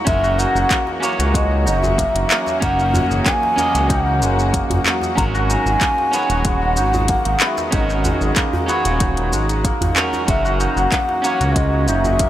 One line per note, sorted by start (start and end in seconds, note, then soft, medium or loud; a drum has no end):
0.00 0.12 F#3 medium
0.00 12.30 F#3 medium
0.00 0.70 A#3 medium
0.00 0.38 D#4 medium
0.00 12.30 F#4 medium
0.00 1.03 G#4 medium
0.05 0.46 F#1 loud
0.05 5.17 E3 medium
0.05 1.33 G#3 medium
0.05 0.98 C#4 medium
0.05 0.99 F#4 medium
0.05 0.40 E5 loud
0.05 kick loud
0.05 closed hi-hat medium
0.05 shaker soft
0.09 1.00 A#4 loud
0.23 1.19 F#4 loud
0.23 shaker soft
0.39 0.87 D#4 loud
0.39 1.03 F#5 loud
0.39 shaker medium
0.55 0.65 F#1 medium
0.55 4.84 F#3 loud
0.55 djembe tone soft
0.55 shaker soft
0.68 5.17 A#3 medium
0.68 1.02 A#3 loud
0.68 kick loud
0.68 clap medium
0.68 closed hi-hat medium
0.68 shaker soft
0.84 7.16 C#4 medium
0.84 1.51 D#4 medium
0.84 djembe slap soft
1.00 1.98 A#3 loud
1.00 2.57 C#4 medium
1.00 2.58 F#4 medium
1.00 shaker medium
1.04 2.59 C#5 loud
1.19 1.68 C#2 loud
1.19 4.44 F#4 loud
1.19 closed hi-hat soft
1.19 shaker soft
1.34 2.92 G#3 medium
1.34 1.64 D#5 medium
1.34 kick loud
1.34 closed hi-hat medium
1.34 shaker soft
1.51 1.66 D#4 medium
1.66 2.06 F#1 medium
1.66 2.15 D#4 loud
1.66 2.59 E5 loud
1.66 shaker medium
1.82 3.10 G#4 medium
1.82 djembe tone medium
1.82 shaker soft
1.98 2.30 A#3 loud
1.98 kick loud
1.98 closed hi-hat medium
1.98 shaker soft
2.15 2.25 F#1 loud
2.15 2.47 D#4 medium
2.15 closed hi-hat soft
2.30 3.25 A#3 loud
2.30 clap medium
2.30 shaker medium
2.47 2.62 D#4 medium
2.47 djembe slap medium
2.47 shaker soft
2.60 3.02 F#1 medium
2.60 3.53 C#4 medium
2.60 2.78 D#4 loud
2.60 3.54 F#4 medium
2.60 3.22 F#5 loud
2.60 kick loud
2.60 closed hi-hat medium
2.60 shaker soft
2.64 3.55 A#4 loud
2.79 3.42 D#4 medium
2.79 shaker soft
2.93 4.20 G#3 medium
2.93 djembe bass medium
2.93 shaker medium
3.10 3.21 F#1 medium
3.10 6.13 G#4 medium
3.10 shaker soft
3.25 3.57 A#3 medium
3.25 3.91 G#5 loud
3.25 kick loud
3.25 clap medium
3.25 closed hi-hat medium
3.25 shaker soft
3.42 3.89 D#4 medium
3.42 djembe slap medium
3.56 3.74 A#3 loud
3.56 5.13 C#4 medium
3.56 5.14 F#4 medium
3.56 djembe tone medium
3.56 shaker medium
3.60 5.15 D#5 loud
3.75 4.23 C#2 loud
3.75 4.53 A#3 medium
3.75 closed hi-hat soft
3.75 shaker soft
3.89 4.06 D#4 loud
3.89 4.85 F#5 loud
3.89 kick loud
3.89 closed hi-hat medium
3.89 shaker soft
4.06 4.38 D#4 medium
4.21 4.61 F#1 medium
4.21 5.16 G#3 medium
4.21 djembe slap soft
4.21 shaker medium
4.38 4.70 D#4 medium
4.38 shaker soft
4.53 5.81 A#3 loud
4.53 kick loud
4.53 closed hi-hat medium
4.53 shaker soft
4.70 4.80 F#1 loud
4.70 5.02 D#4 medium
4.70 closed hi-hat soft
4.70 djembe bass medium
4.85 5.23 F#3 medium
4.85 clap medium
4.85 shaker medium
5.02 5.49 D#4 medium
5.02 djembe tone medium
5.02 shaker soft
5.15 5.57 G#1 loud
5.15 10.28 D#3 medium
5.15 6.44 G#3 medium
5.15 6.09 C#4 loud
5.15 6.10 F#4 medium
5.15 5.24 A#5 loud
5.15 kick loud
5.15 closed hi-hat medium
5.15 shaker soft
5.20 6.11 A#4 loud
5.34 10.29 G#3 medium
5.34 6.30 F#4 loud
5.34 shaker soft
5.49 5.98 D#4 loud
5.49 6.38 G#5 loud
5.49 shaker medium
5.66 5.76 G#1 medium
5.66 9.96 F#3 loud
5.66 djembe tone soft
5.66 shaker soft
5.81 6.20 A#3 loud
5.81 kick loud
5.81 clap medium
5.81 closed hi-hat medium
5.81 shaker soft
5.98 6.62 D#4 medium
5.98 djembe slap soft
6.11 7.15 B3 loud
6.11 7.68 C#4 loud
6.11 7.69 F#4 medium
6.11 7.70 C#5 loud
6.11 shaker medium
6.30 6.78 D#1 loud
6.30 9.55 F#4 loud
6.30 closed hi-hat soft
6.30 shaker soft
6.38 6.47 G#5 medium
6.45 8.03 G#3 medium
6.45 7.41 F#5 loud
6.45 kick loud
6.45 closed hi-hat medium
6.45 shaker soft
6.62 6.77 D#4 medium
6.77 7.16 G#1 medium
6.77 7.25 D#4 medium
6.77 shaker medium
6.93 8.21 G#4 medium
6.93 djembe tone medium
6.93 shaker soft
7.08 7.47 A#3 loud
7.08 kick loud
7.08 closed hi-hat medium
7.08 shaker soft
7.25 7.36 G#1 loud
7.25 7.57 D#4 medium
7.25 closed hi-hat soft
7.40 8.42 B3 loud
7.40 7.47 F#5 medium
7.40 clap medium
7.40 shaker medium
7.46 7.72 E5 medium
7.58 7.72 D#4 medium
7.58 djembe slap medium
7.58 shaker soft
7.71 8.12 G#1 loud
7.71 8.64 C#4 medium
7.71 7.89 D#4 medium
7.71 8.65 F#4 medium
7.71 8.33 D#5 medium
7.71 kick loud
7.71 closed hi-hat medium
7.71 shaker soft
7.75 8.66 A#4 loud
7.90 8.53 D#4 medium
7.90 shaker soft
8.05 9.31 G#3 medium
8.05 djembe bass medium
8.05 shaker medium
8.21 8.31 G#1 medium
8.21 11.24 G#4 medium
8.21 shaker soft
8.36 8.75 A#3 loud
8.36 kick loud
8.36 clap medium
8.36 closed hi-hat medium
8.36 shaker soft
8.53 9.00 D#4 medium
8.53 djembe slap soft
8.53 djembe bass medium
8.66 8.92 B3 loud
8.66 9.92 C#4 medium
8.66 9.93 F#4 medium
8.66 djembe tone medium
8.66 shaker medium
8.70 9.94 C#5 loud
8.85 9.34 D#1 loud
8.85 9.64 A#3 medium
8.85 closed hi-hat soft
8.85 shaker soft
9.00 9.17 D#4 loud
9.00 kick loud
9.00 closed hi-hat medium
9.00 shaker soft
9.17 9.49 D#4 medium
9.17 closed hi-hat soft
9.32 9.72 G#1 medium
9.32 10.27 G#3 medium
9.32 djembe slap soft
9.32 shaker medium
9.49 9.81 D#4 medium
9.49 closed hi-hat soft
9.49 shaker soft
9.64 10.91 A#3 loud
9.64 kick loud
9.64 closed hi-hat medium
9.64 shaker medium
9.81 9.91 G#1 loud
9.81 10.13 D#4 medium
9.81 closed hi-hat soft
9.81 djembe bass loud
9.95 10.33 F#3 medium
9.95 10.24 C#4 medium
9.95 10.25 F#4 medium
9.95 10.25 A#4 medium
9.95 clap medium
9.95 shaker medium
10.13 10.60 D#4 medium
10.13 djembe tone medium
10.13 shaker soft
10.26 10.68 F#1 loud
10.26 12.30 E3 medium
10.26 11.55 G#3 medium
10.26 11.19 C#4 medium
10.26 11.20 F#4 medium
10.26 11.21 A#4 loud
10.26 10.58 E5 loud
10.26 kick loud
10.26 closed hi-hat medium
10.26 shaker soft
10.45 11.40 F#4 loud
10.45 shaker soft
10.60 11.08 D#4 loud
10.60 11.58 F#5 loud
10.60 shaker medium
10.76 10.87 F#1 medium
10.76 12.30 F#3 loud
10.76 12.30 A#3 medium
10.76 djembe tone soft
10.76 shaker soft
10.91 11.23 A#3 loud
10.91 kick loud
10.91 clap medium
10.91 closed hi-hat medium
10.91 shaker soft
11.08 11.73 D#4 medium
11.08 djembe slap medium
11.17 12.30 C#4 medium
11.22 12.20 A#3 loud
11.22 12.30 C#4 loud
11.22 12.30 F#4 medium
11.22 shaker medium
11.26 12.30 C#5 loud
11.41 11.89 C#2 loud
11.41 12.30 F#4 medium
11.41 closed hi-hat soft
11.41 shaker soft
11.56 12.30 G#3 medium
11.56 11.89 D#5 medium
11.56 kick loud
11.56 closed hi-hat medium
11.56 shaker soft
11.73 11.88 D#4 medium
11.87 12.27 F#1 medium
11.87 12.30 D#4 loud
11.87 12.30 E5 loud
11.87 shaker medium
12.05 12.30 G#4 medium
12.05 djembe tone medium
12.05 shaker soft
12.19 12.30 A#3 loud
12.19 kick loud
12.19 closed hi-hat medium
12.19 shaker soft